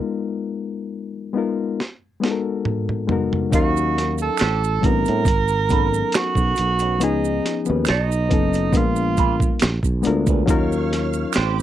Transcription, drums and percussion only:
1.80 snare
2.24 snare
2.65 mid tom
2.89 mid tom
3.09 floor tom
3.33 floor tom
3.52 kick, closed hi-hat, maracas
3.77 maracas
3.98 snare, closed hi-hat
4.18 maracas
4.37 finger snap, snare, closed hi-hat, maracas
4.64 maracas
4.83 kick, closed hi-hat
5.05 closed hi-hat, maracas
5.25 kick, closed hi-hat, maracas
5.48 maracas
5.69 kick, closed hi-hat, maracas
5.94 maracas
6.12 finger snap, snare, closed hi-hat, maracas
6.35 kick, maracas
6.56 closed hi-hat, maracas
6.79 closed hi-hat, maracas
7.01 closed hi-hat, maracas
7.25 maracas
7.46 snare, closed hi-hat
7.65 maracas
7.85 finger snap, snare, closed hi-hat, maracas
8.12 maracas
8.31 kick, closed hi-hat
8.53 closed hi-hat, maracas
8.72 kick, closed hi-hat, maracas
8.96 maracas
9.17 kick, closed hi-hat, maracas
9.40 kick, maracas
9.60 finger snap, snare, closed hi-hat, maracas
9.83 kick, maracas
10.03 closed hi-hat, maracas
10.27 kick, closed hi-hat, maracas
10.48 kick, closed hi-hat, maracas
10.72 maracas
10.93 snare, closed hi-hat
11.13 maracas
11.33 finger snap, snare, closed hi-hat, maracas

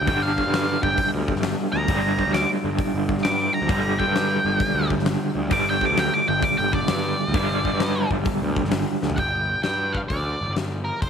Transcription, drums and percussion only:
0.07 kick, open hi-hat
0.38 kick
0.53 snare, open hi-hat
0.83 kick
0.97 kick, open hi-hat
1.28 kick
1.36 snare
1.43 snare, open hi-hat
1.88 kick, open hi-hat
2.19 kick
2.34 snare, open hi-hat
2.79 kick, open hi-hat
3.09 kick
3.18 snare
3.25 snare, open hi-hat
3.69 kick, open hi-hat
4.00 kick
4.15 snare, open hi-hat
4.60 kick, open hi-hat
4.90 kick
4.99 snare
5.06 snare, open hi-hat
5.51 kick, open hi-hat
5.81 kick
5.97 snare, open hi-hat
6.43 kick, open hi-hat
6.73 kick
6.88 snare, open hi-hat
7.34 kick, open hi-hat
7.65 kick
7.80 snare, open hi-hat
8.11 kick
8.25 kick, open hi-hat
8.56 kick
8.65 snare
8.71 snare, open hi-hat
9.02 snare
9.10 floor tom
9.17 kick, open hi-hat
9.63 snare, open hi-hat
9.95 kick
10.10 kick, open hi-hat
10.56 snare, open hi-hat
11.02 kick, open hi-hat

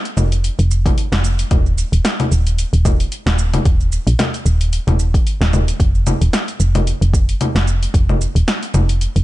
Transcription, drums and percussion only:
0.05 open hi-hat, shaker
0.17 low conga, shaker
0.32 open hi-hat, shaker
0.44 open hi-hat, shaker
0.59 open hi-hat, shaker
0.71 shaker
0.86 kick, open hi-hat, low conga, shaker
0.98 open hi-hat, shaker
1.12 snare, open hi-hat, shaker
1.24 shaker
1.39 open hi-hat, shaker
1.51 kick, open hi-hat, low conga, shaker
1.66 shaker
1.78 shaker
1.93 open hi-hat, shaker
2.05 snare, open hi-hat, shaker
2.20 open hi-hat, low conga, shaker
2.32 shaker
2.47 open hi-hat, shaker
2.58 open hi-hat, shaker
2.73 open hi-hat, shaker
2.85 kick, low conga, shaker
3.00 open hi-hat, shaker
3.12 open hi-hat, shaker
3.27 snare, open hi-hat, shaker
3.39 shaker
3.54 open hi-hat, low conga, shaker
3.65 kick, open hi-hat, shaker
3.81 shaker
3.92 shaker
4.07 open hi-hat, shaker
4.19 snare, open hi-hat, low conga, shaker
4.34 open hi-hat, shaker
4.46 shaker
4.61 open hi-hat, shaker
4.73 open hi-hat, shaker
4.88 open hi-hat, low conga, shaker
4.99 shaker
5.14 kick, open hi-hat, shaker
5.27 open hi-hat, shaker
5.42 snare, open hi-hat, shaker
5.53 low conga, shaker
5.68 open hi-hat, shaker
5.80 kick, open hi-hat, shaker
5.95 shaker
6.07 low conga, shaker
6.22 open hi-hat, shaker
6.33 snare, open hi-hat, shaker
6.48 open hi-hat, shaker
6.60 shaker
6.75 open hi-hat, low conga, shaker
6.87 open hi-hat, shaker
7.02 open hi-hat, shaker
7.14 kick, shaker
7.29 open hi-hat, shaker
7.41 open hi-hat, low conga, shaker
7.56 snare, open hi-hat, shaker
7.68 shaker
7.83 open hi-hat, shaker
7.94 kick, open hi-hat, shaker
8.09 low conga, shaker
8.21 shaker
8.36 open hi-hat, shaker
8.48 snare, open hi-hat, shaker
8.63 open hi-hat, shaker
8.74 low conga, shaker
8.89 open hi-hat, shaker
9.01 open hi-hat, shaker
9.16 open hi-hat, shaker

